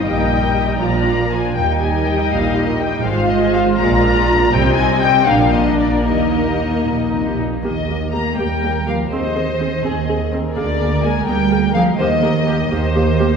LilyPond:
<<
  \new Staff \with { instrumentName = "Violin section" } { \time 6/8 \key ees \major \tempo 4. = 81 g''4. bes''4 aes''8 | g''8 aes''8 g''8 f''8 ees''8 g''8 | f''8 ees''8 f''8 bes''4. | g''8 aes''8 g''8 f''8 ees''8 d''8 |
ees''2~ ees''8 r8 | ees''4 bes''8 g''4 f''8 | ees''2~ ees''8 r8 | d''4 aes''8 g''4 f''8 |
ees''2~ ees''8 r8 | }
  \new Staff \with { instrumentName = "Violin section" } { \time 6/8 \key ees \major << { ees''4. d''4 r8 | ees''2. | c''4. d''4. | ees''4. bes'4.~ |
bes'2~ bes'8 r8 | r4. bes'4. | c''4. aes'8 aes'8 bes'8~ | bes'2. |
c''8 bes'8 g'8 c''4. | } \\ { bes16 ees'16 g'16 bes'16 g'16 ees'16 bes16 d'16 f'16 bes'16 f'16 d'16 | bes16 ees'16 g'16 bes'16 g'16 ees'16 bes16 ees'16 g'16 bes'16 g'16 ees'16 | aes16 c'16 f'16 aes'16 f'16 c'16 aes16 bes16 d'16 f'16 d'16 bes16 | g16 c'16 ees'16 c'16 g16 c'16 bes16 d'16 f'16 d'16 bes16 d'16 |
g16 bes16 ees'16 g'16 ees'16 bes16 g16 bes16 ees'16 g'16 ees'16 bes16 | r2. | r2. | r2. |
r2. | } >> }
  \new Staff \with { instrumentName = "Viola section" } { \time 6/8 \key ees \major << { ees'4. f'4 r8 | ees'2. | f'2. | c'4. d'4. |
ees'2~ ees'8 r8 | g'8 g'8 g'8 g'8 g'8 g'8 | aes'8 aes'8 aes'8 aes'8 aes'8 aes'8 | aes'8 aes'8 aes'8 aes'8 aes'8 aes'8 |
g'8 g'8 g'8 g'8 g'8 g'8 | } \\ { g4. f4 r8 | g2. | aes2. | g4. bes4.~ |
bes2~ bes8 r8 | bes8 bes8 bes8 bes8 bes8 bes8 | c'8 c'8 c'8 c'8 c'8 c'8 | bes8 bes8 bes8 bes8 bes8 bes8 |
bes8 bes8 bes8 bes8 bes8 bes8 | } >> }
  \new Staff \with { instrumentName = "Cello section" } { \clef bass \time 6/8 \key ees \major bes,4. bes,4. | ees,4. bes,4. | aes,4. bes,4. | c4. bes,4. |
ees4. bes,8 c8 bes,8 | ees4 bes8 g4 f8 | ees2~ ees8 r8 | d4 aes8 g4 f8 |
ees2~ ees8 r8 | }
  \new Staff \with { instrumentName = "Double bass section" } { \clef bass \time 6/8 \key ees \major bes,,4. bes,,4. | ees,4. bes,,4. | aes,,4. bes,,4. | c,4. bes,,4. |
ees,4. bes,,4. | ees,4. ees,4. | ees,4. ees,4. | d,4. d,4. |
ees,4. ees,4. | }
>>